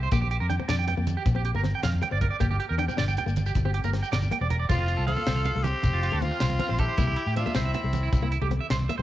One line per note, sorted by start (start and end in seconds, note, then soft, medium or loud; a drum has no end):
0.03 0.08 C5 medium
0.11 0.37 A#1 loud
0.11 0.25 A#3 medium
0.11 0.17 G4 medium
0.11 kick medium
0.11 closed hi-hat medium
0.11 muted conga medium
0.11 shekere loud
0.22 0.26 G4 medium
0.22 high conga medium
0.22 low conga medium
0.31 0.36 G4 medium
0.31 closed hi-hat soft
0.40 0.58 F2 medium
0.40 0.45 A#4 medium
0.50 0.56 D4 medium
0.50 0.55 G5 medium
0.50 closed hi-hat medium
0.50 high conga medium
0.60 0.66 C4 medium
0.60 muted clean electric guitar stroke medium
0.60 muted conga medium
0.60 low conga medium
0.69 0.94 F2 medium
0.69 0.82 D4 medium
0.69 0.74 D5 medium
0.69 snare medium
0.69 closed hi-hat medium
0.69 low conga soft
0.69 shekere medium
0.79 0.84 G5 medium
0.79 high conga medium
0.88 0.93 G5 medium
0.88 closed hi-hat soft
0.88 low conga medium
0.97 1.15 F2 medium
0.97 1.10 A#3 medium
1.07 closed hi-hat medium
1.07 muted conga medium
1.07 high conga medium
1.07 shekere soft
1.17 1.22 G4 medium
1.26 1.51 A#1 medium
1.26 kick medium
1.26 closed hi-hat medium
1.26 low conga medium
1.26 shekere medium
1.35 1.48 C4 medium
1.35 1.41 G4 medium
1.35 high conga medium
1.35 low conga soft
1.45 1.50 G4 medium
1.45 closed hi-hat soft
1.55 1.72 G1 medium
1.55 1.61 A#3 medium
1.55 1.60 A#4 medium
1.55 muted conga medium
1.55 low conga medium
1.64 1.77 C4 medium
1.64 snare soft
1.64 closed hi-hat soft
1.64 high conga medium
1.75 1.80 G5 medium
1.83 2.01 F2 medium
1.83 1.89 F5 medium
1.83 snare medium
1.83 closed hi-hat medium
1.83 shekere medium
1.94 high conga medium
1.94 low conga medium
2.02 2.08 G5 medium
2.02 muted nylon-string guitar stroke medium
2.02 closed hi-hat soft
2.02 muted conga medium
2.02 low conga soft
2.11 2.29 G1 medium
2.11 2.24 C4 medium
2.11 2.17 D5 medium
2.21 2.26 A#4 medium
2.21 kick medium
2.21 closed hi-hat soft
2.21 high conga medium
2.21 low conga medium
2.31 2.36 D5 medium
2.40 2.57 G1 loud
2.40 2.53 A#3 medium
2.40 2.45 G4 medium
2.40 kick medium
2.40 closed hi-hat medium
2.40 muted conga medium
2.40 shekere loud
2.51 2.55 G4 medium
2.51 high conga medium
2.51 low conga medium
2.60 2.65 G4 medium
2.60 closed hi-hat soft
2.69 2.87 E2 medium
2.69 2.74 A#4 medium
2.78 2.85 D4 medium
2.78 2.84 G5 medium
2.78 closed hi-hat soft
2.78 high conga medium
2.88 2.95 C4 medium
2.88 2.93 G5 medium
2.88 muted conga medium
2.88 low conga medium
2.88 shekere soft
2.97 3.15 G1 medium
2.97 3.10 D4 medium
2.97 3.03 D5 medium
2.97 snare medium
2.97 closed hi-hat medium
2.97 shekere medium
3.08 3.13 G5 medium
3.08 high conga medium
3.08 shekere soft
3.17 3.23 G5 medium
3.17 closed hi-hat soft
3.17 low conga medium
3.17 shekere soft
3.26 3.52 G1 medium
3.26 3.39 A#3 medium
3.26 shekere soft
3.36 closed hi-hat medium
3.36 muted conga medium
3.36 high conga medium
3.36 low conga soft
3.36 shekere soft
3.46 3.51 G4 medium
3.46 shekere soft
3.55 3.80 G1 medium
3.55 kick medium
3.55 closed hi-hat medium
3.55 low conga medium
3.55 shekere medium
3.65 3.78 C4 medium
3.65 3.70 G4 medium
3.65 high conga medium
3.74 3.79 G4 medium
3.74 closed hi-hat soft
3.74 low conga soft
3.84 4.01 G1 medium
3.84 3.91 A#3 medium
3.84 3.89 A#4 medium
3.84 muted conga medium
3.84 low conga medium
3.84 shekere soft
3.93 4.06 C4 medium
3.93 snare soft
3.93 closed hi-hat soft
3.93 high conga medium
4.03 4.07 G5 medium
4.03 low conga soft
4.03 shekere soft
4.12 4.29 G1 medium
4.12 4.17 D5 medium
4.12 snare medium
4.12 closed hi-hat medium
4.12 shekere medium
4.22 high conga medium
4.22 low conga medium
4.22 shekere soft
4.31 4.38 A#3 medium
4.31 4.37 G5 medium
4.31 closed hi-hat soft
4.31 muted conga medium
4.41 4.66 E1 medium
4.41 4.54 C4 medium
4.41 4.46 D5 medium
4.50 4.55 A#4 medium
4.50 closed hi-hat soft
4.50 high conga medium
4.50 low conga medium
4.59 4.64 D5 medium
4.59 low conga soft
4.69 4.94 F1 medium
4.69 4.82 A3 medium
4.69 5.06 C4 medium
4.69 4.74 F4 medium
4.69 5.06 F4 medium
4.69 kick medium
4.69 closed hi-hat medium
4.69 muted conga loud
4.69 shekere medium
4.78 4.83 F4 medium
4.78 high conga medium
4.78 low conga medium
4.88 4.93 F4 medium
4.88 closed hi-hat soft
4.97 5.15 C2 medium
4.97 5.02 A4 medium
5.07 5.14 C4 medium
5.07 5.68 F4 medium
5.07 5.65 A4 loud
5.07 5.12 F5 medium
5.07 closed hi-hat soft
5.07 high conga medium
5.16 5.23 A#3 medium
5.16 5.22 F5 medium
5.16 muted conga medium
5.16 low conga medium
5.27 5.52 C2 medium
5.27 5.40 C4 medium
5.27 5.32 C5 medium
5.27 snare medium
5.27 closed hi-hat medium
5.27 shekere medium
5.36 5.41 F5 medium
5.36 high conga medium
5.45 5.51 F5 medium
5.45 closed hi-hat soft
5.45 low conga medium
5.56 5.72 C2 medium
5.56 5.68 A3 medium
5.63 6.22 C4 medium
5.63 6.24 G4 medium
5.63 closed hi-hat soft
5.63 muted conga loud
5.63 high conga medium
5.63 shekere soft
5.83 6.09 F1 medium
5.83 kick medium
5.83 closed hi-hat medium
5.83 low conga loud
5.83 shekere medium
5.93 5.98 F4 medium
5.93 high conga medium
5.93 low conga soft
6.03 6.08 F4 medium
6.03 closed hi-hat soft
6.12 6.29 D2 medium
6.12 6.19 A3 medium
6.12 6.18 A4 medium
6.12 muted conga medium
6.12 low conga medium
6.21 6.81 C4 medium
6.21 6.35 C4 medium
6.21 6.81 F4 medium
6.21 closed hi-hat soft
6.21 high conga loud
6.32 6.36 F5 medium
6.40 6.58 C2 medium
6.40 6.46 C5 medium
6.40 snare medium
6.40 closed hi-hat medium
6.40 shekere loud
6.50 high conga medium
6.50 low conga medium
6.59 6.66 C4 medium
6.59 6.65 F5 medium
6.59 closed hi-hat medium
6.59 muted conga medium
6.59 low conga soft
6.69 6.87 A#1 medium
6.69 6.82 C4 medium
6.69 6.74 C5 medium
6.78 7.37 E4 medium
6.78 7.36 G4 medium
6.78 6.84 A4 medium
6.78 kick medium
6.78 closed hi-hat soft
6.78 high conga medium
6.78 low conga medium
6.88 6.93 C5 medium
6.98 7.15 C2 loud
6.98 7.11 A#3 medium
6.98 7.03 E4 medium
6.98 kick medium
6.98 closed hi-hat medium
6.98 muted conga loud
6.98 shekere loud
7.07 7.12 E4 medium
7.07 high conga medium
7.07 low conga medium
7.16 7.22 E4 medium
7.16 closed hi-hat soft
7.27 7.43 A2 medium
7.27 7.32 G4 medium
7.36 7.43 C4 medium
7.36 7.58 D4 medium
7.36 7.57 F4 medium
7.36 7.42 E5 medium
7.36 closed hi-hat medium
7.36 high conga loud
7.46 7.52 A#3 medium
7.46 7.51 E5 medium
7.46 muted conga medium
7.46 low conga medium
7.55 7.72 C2 medium
7.55 7.68 C4 medium
7.55 8.32 C4 medium
7.55 8.32 E4 medium
7.55 7.60 C5 medium
7.55 snare medium
7.55 closed hi-hat medium
7.55 shekere loud
7.65 7.70 E5 medium
7.65 high conga medium
7.74 7.80 E5 medium
7.74 closed hi-hat medium
7.74 low conga medium
7.84 8.09 C2 medium
7.84 7.97 A3 medium
7.93 closed hi-hat medium
7.93 muted conga medium
7.93 high conga medium
7.93 shekere soft
8.03 8.08 E4 medium
8.13 8.38 C2 loud
8.13 kick medium
8.13 closed hi-hat medium
8.13 low conga loud
8.13 shekere medium
8.22 8.35 A#3 medium
8.22 8.27 E4 medium
8.22 high conga medium
8.22 low conga soft
8.32 8.37 E4 medium
8.32 closed hi-hat soft
8.32 low conga soft
8.41 8.58 C2 medium
8.41 8.48 A3 medium
8.41 8.46 G4 medium
8.41 muted conga medium
8.41 low conga medium
8.51 8.64 C4 medium
8.51 closed hi-hat soft
8.51 high conga medium
8.60 8.65 E5 medium
8.70 8.87 C2 medium
8.70 8.75 C5 medium
8.70 snare medium
8.70 closed hi-hat medium
8.70 shekere medium
8.80 high conga medium
8.80 low conga medium
8.89 8.96 A#3 medium
8.89 8.94 E5 medium
8.89 closed hi-hat soft
8.89 muted conga medium
8.89 low conga soft
8.98 9.02 C2 medium
8.98 9.02 C5 medium